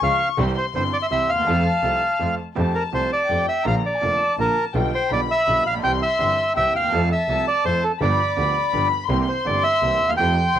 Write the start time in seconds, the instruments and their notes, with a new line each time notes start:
Already playing: violin section C#6
0.02 double bass C#2, upright piano C#2 C#3 F3 G#3 C#4 G#4, string section G#3 C#4 F4, bandoneon F5
0.38 double bass C2, upright piano C2 C3 E3 G3 C4 G4, string section G3 C4 E4, violin section C6
0.58 bandoneon C5
0.74 double bass G1, upright piano G1 G2 E3 G3 C4 G4, string section G3 C4 E4, bandoneon C5
0.93 bandoneon D5
1.02 bandoneon E5
1.10 upright piano C2 C3 E3 G3 C4 G4, double bass C2, string section G3 C4 E4, bandoneon E5
1.29 double bass D#2, bandoneon F5
1.34 upright piano D2
1.38 upright piano D#2
1.42 upright piano E2
1.46 double bass F2, upright piano F2 F3 A3 C4 A4, string section A3 C4 F4, violin section A5
1.82 upright piano C2 C3 F3 A3 C4 A4, double bass C2, string section A3 C4 F4
2.19 upright piano F2 F3 A3 C4 A4, double bass F2, string section A3 C4 F4
2.55 upright piano F2 F3 A3 C4 G4, double bass F2, violin section A5
2.75 bandoneon A#4
2.92 double bass C2, upright piano C2 C3 F3 A3 C4 G4, bandoneon C5
3.13 bandoneon D5
3.29 upright piano F2 F3 A3 C4 G4, double bass F2, violin section G5
3.49 bandoneon E5
3.65 upright piano A#1 A#2 D3 F3 A#3 F4, double bass A#1, bandoneon F5, violin section A#5
3.86 bandoneon D5
3.95 violin section G#5
4.01 upright piano F1 F2 D3 F3 A#3 F4, double bass F1, violin section A5
4.38 double bass A#1, upright piano A#1 A#2 D3 F3 A#3 F4, bandoneon A#4
4.75 double bass B1, upright piano B1 B2 D3 G3 B3 F4, violin section G5
4.95 bandoneon C5
5.11 double bass B1, upright piano B1 B2 D3 G3 B3 F4, bandoneon D5, violin section B5
5.31 bandoneon E5
5.47 double bass B1, upright piano B1 B2 D3 G3 B3 F4
5.65 double bass A#1, bandoneon F5
5.70 upright piano A1
5.75 upright piano A#1 B1
5.83 double bass C2, upright piano C2 C3 E3 G3 C4 G4, bandoneon G5, violin section C6
6.03 bandoneon E5
6.19 upright piano G1 G2 E3 G3 C4 G4, double bass G1
6.56 double bass C2, upright piano C2 C3 E3 G3 C4 G4, bandoneon E5, violin section G5
6.74 double bass D#2, bandoneon F5
6.79 upright piano D2
6.84 upright piano D#2 E2
6.92 double bass F2, upright piano F2 F3 A3 C4 A4, violin section A5
7.12 bandoneon E5
7.28 double bass C2, upright piano C2 C3 F3 A3 C4 A4
7.48 bandoneon D5
7.65 double bass F2, upright piano F2 F3 A3 C4 A4, bandoneon C5
7.84 bandoneon A4
8.01 upright piano G1 G2 F3 B3 D4 G4, double bass G1, bandoneon D5, violin section B5
8.36 upright piano D2 D3 F3 B3 D4 G4, double bass D2, violin section B5
8.73 upright piano G1 G2 F3 B3 D4 G4, double bass G1
9.08 double bass C2, upright piano C2 C3 E3 A#3 C4 G4, violin section C6
9.28 bandoneon C5
9.45 upright piano G1 G2 E3 A#3 C4 G4, double bass G1, bandoneon D5
9.64 bandoneon E5
9.82 upright piano C2 C3 E3 A#3 C4 G4, double bass C2
10.01 upright piano D2, double bass D#2
10.09 upright piano D#2, bandoneon F5
10.14 upright piano E2, bandoneon G5
10.18 upright piano F2 F3 A3 C4 G4, double bass F2, violin section C6
10.55 double bass C2, upright piano C2 C3 F3 A3 C4 G4